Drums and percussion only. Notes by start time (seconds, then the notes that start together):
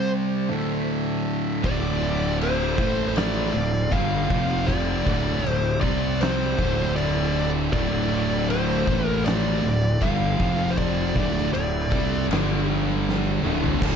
1.64 kick, crash
2.41 crash
2.78 kick
3.16 snare, crash
3.92 kick, crash
4.30 kick
4.68 kick, crash
5.07 kick
5.46 crash
5.83 kick
6.21 snare, crash
6.59 kick
6.98 crash
7.73 kick, crash
8.50 crash
8.87 kick
9.26 snare, crash
10.02 kick, crash
10.40 kick
10.77 kick, crash
11.16 kick
11.38 snare
11.55 crash
11.92 kick
12.31 snare, crash
13.09 snare
13.45 mid tom
13.64 floor tom
13.82 kick, crash